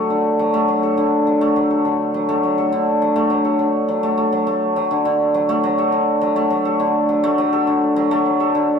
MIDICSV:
0, 0, Header, 1, 2, 480
1, 0, Start_track
1, 0, Tempo, 582524
1, 324, Time_signature, 4, 2, 24, 8
1, 7245, End_track
2, 0, Start_track
2, 0, Title_t, "Hammered dulcimer"
2, 0, Program_c, 0, 15
2, 0, Note_on_c, 0, 54, 70
2, 0, Note_on_c, 0, 57, 88
2, 0, Note_on_c, 0, 69, 60
2, 82, Note_on_c, 0, 50, 55
2, 125, Note_off_c, 0, 54, 0
2, 324, Note_on_c, 0, 54, 75
2, 440, Note_off_c, 0, 57, 0
2, 443, Note_on_c, 0, 57, 89
2, 553, Note_off_c, 0, 54, 0
2, 563, Note_on_c, 0, 54, 65
2, 681, Note_off_c, 0, 69, 0
2, 684, Note_on_c, 0, 69, 67
2, 793, Note_off_c, 0, 50, 0
2, 803, Note_on_c, 0, 50, 71
2, 845, Note_off_c, 0, 54, 0
2, 1045, Note_on_c, 0, 54, 65
2, 1160, Note_off_c, 0, 57, 0
2, 1164, Note_on_c, 0, 57, 87
2, 1276, Note_off_c, 0, 54, 0
2, 1286, Note_on_c, 0, 54, 67
2, 1402, Note_off_c, 0, 69, 0
2, 1405, Note_on_c, 0, 69, 60
2, 1515, Note_off_c, 0, 50, 0
2, 1525, Note_on_c, 0, 50, 62
2, 1565, Note_off_c, 0, 54, 0
2, 1766, Note_on_c, 0, 54, 67
2, 1881, Note_off_c, 0, 57, 0
2, 1885, Note_on_c, 0, 57, 87
2, 1995, Note_off_c, 0, 54, 0
2, 2005, Note_on_c, 0, 54, 53
2, 2123, Note_off_c, 0, 69, 0
2, 2126, Note_on_c, 0, 69, 67
2, 2235, Note_off_c, 0, 50, 0
2, 2245, Note_on_c, 0, 50, 76
2, 2285, Note_off_c, 0, 54, 0
2, 2487, Note_on_c, 0, 54, 65
2, 2598, Note_off_c, 0, 57, 0
2, 2601, Note_on_c, 0, 57, 92
2, 2710, Note_off_c, 0, 54, 0
2, 2720, Note_on_c, 0, 54, 73
2, 2837, Note_off_c, 0, 69, 0
2, 2840, Note_on_c, 0, 69, 65
2, 2948, Note_off_c, 0, 50, 0
2, 2958, Note_on_c, 0, 50, 57
2, 3005, Note_off_c, 0, 54, 0
2, 3201, Note_on_c, 0, 54, 65
2, 3318, Note_off_c, 0, 57, 0
2, 3321, Note_on_c, 0, 57, 81
2, 3438, Note_off_c, 0, 57, 0
2, 3441, Note_on_c, 0, 57, 72
2, 3554, Note_off_c, 0, 54, 0
2, 3564, Note_on_c, 0, 54, 68
2, 3678, Note_off_c, 0, 57, 0
2, 3681, Note_on_c, 0, 57, 66
2, 3915, Note_off_c, 0, 54, 0
2, 3924, Note_on_c, 0, 54, 78
2, 4034, Note_off_c, 0, 50, 0
2, 4044, Note_on_c, 0, 50, 70
2, 4085, Note_off_c, 0, 54, 0
2, 4153, Note_off_c, 0, 50, 0
2, 4163, Note_on_c, 0, 50, 78
2, 4403, Note_on_c, 0, 54, 69
2, 4521, Note_off_c, 0, 57, 0
2, 4524, Note_on_c, 0, 57, 93
2, 4634, Note_off_c, 0, 54, 0
2, 4644, Note_on_c, 0, 54, 84
2, 4763, Note_off_c, 0, 69, 0
2, 4766, Note_on_c, 0, 69, 72
2, 4871, Note_off_c, 0, 50, 0
2, 4881, Note_on_c, 0, 50, 66
2, 4925, Note_off_c, 0, 54, 0
2, 5120, Note_on_c, 0, 54, 82
2, 5238, Note_off_c, 0, 57, 0
2, 5241, Note_on_c, 0, 57, 93
2, 5349, Note_off_c, 0, 54, 0
2, 5359, Note_on_c, 0, 54, 74
2, 5479, Note_off_c, 0, 69, 0
2, 5482, Note_on_c, 0, 69, 75
2, 5590, Note_off_c, 0, 50, 0
2, 5600, Note_on_c, 0, 50, 79
2, 5645, Note_off_c, 0, 54, 0
2, 5841, Note_on_c, 0, 54, 62
2, 5959, Note_off_c, 0, 57, 0
2, 5963, Note_on_c, 0, 57, 104
2, 6072, Note_off_c, 0, 54, 0
2, 6082, Note_on_c, 0, 54, 84
2, 6199, Note_off_c, 0, 69, 0
2, 6202, Note_on_c, 0, 69, 81
2, 6311, Note_off_c, 0, 50, 0
2, 6321, Note_on_c, 0, 50, 70
2, 6365, Note_off_c, 0, 54, 0
2, 6562, Note_on_c, 0, 54, 87
2, 6680, Note_off_c, 0, 57, 0
2, 6684, Note_on_c, 0, 57, 99
2, 6793, Note_off_c, 0, 54, 0
2, 6803, Note_on_c, 0, 54, 65
2, 6920, Note_off_c, 0, 69, 0
2, 6923, Note_on_c, 0, 69, 78
2, 7034, Note_off_c, 0, 50, 0
2, 7044, Note_on_c, 0, 50, 73
2, 7085, Note_off_c, 0, 54, 0
2, 7245, Note_off_c, 0, 50, 0
2, 7245, Note_off_c, 0, 57, 0
2, 7245, Note_off_c, 0, 69, 0
2, 7245, End_track
0, 0, End_of_file